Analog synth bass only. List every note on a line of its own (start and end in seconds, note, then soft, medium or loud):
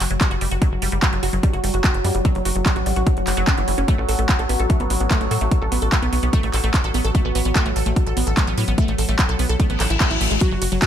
0.00 0.07 F#1 loud
0.11 0.17 F#1 medium
0.31 0.38 F#1 medium
0.41 0.48 F#1 loud
0.51 0.58 F#1 medium
0.72 0.79 F#1 medium
0.82 0.89 F#1 loud
0.92 0.99 F#1 medium
1.13 1.20 F#1 medium
1.23 1.30 F#1 loud
1.33 1.40 F#1 medium
1.53 1.60 F#1 medium
1.64 1.71 F#1 medium
1.74 1.81 F#1 loud
1.94 2.01 F#1 medium
2.04 2.11 F#2 loud
2.15 2.22 F#1 medium
2.35 2.42 F#1 loud
2.45 2.52 F#1 loud
2.55 2.62 F#1 medium
2.76 2.83 A1 medium
2.86 2.93 A1 loud
2.96 3.03 A1 medium
3.17 3.24 F#1 medium
3.27 3.34 F#1 loud
3.37 3.44 F#1 loud
3.58 3.64 F#1 medium
3.68 3.75 F#1 loud
3.78 3.85 F#1 medium
3.98 4.05 A1 medium
4.09 4.15 A1 loud
4.19 4.26 A1 medium
4.39 4.46 A1 medium
4.49 4.56 A1 loud
4.60 4.66 A1 loud
4.80 4.87 A1 medium
4.90 4.97 A1 loud
5.00 5.07 A1 medium
5.21 5.28 A1 medium
5.31 5.38 A2 loud
5.41 5.48 A1 medium
5.62 5.69 A1 loud
5.72 5.79 A1 medium
5.82 5.89 A1 medium
6.02 6.09 B1 medium
6.13 6.20 B1 loud
6.23 6.30 B1 medium
6.43 6.50 A1 medium
6.53 6.60 A1 loud
6.64 6.71 A1 loud
6.84 6.91 A1 medium
6.94 7.01 A1 loud
7.05 7.11 A1 medium
7.25 7.32 A1 medium
7.35 7.42 A1 loud
7.45 7.52 A1 medium
7.66 7.73 A1 medium
7.76 7.83 A1 loud
7.86 7.93 A1 medium
8.07 8.13 A1 medium
8.17 8.24 A1 loud
8.27 8.34 A1 medium
8.47 8.54 A1 medium
8.58 8.64 A2 loud
8.68 8.75 A1 medium
8.88 8.95 A1 medium
8.98 9.05 A1 loud
9.09 9.15 A1 medium
9.29 9.36 B1 medium
9.39 9.46 B1 loud
9.49 9.56 B1 medium
9.70 9.77 A1 medium
9.80 9.87 A1 loud
9.90 9.97 A1 loud
10.11 10.18 A1 medium
10.21 10.28 A1 loud
10.31 10.38 A1 medium
10.51 10.58 F#1 medium
10.62 10.69 F#1 loud
10.72 10.79 F#1 medium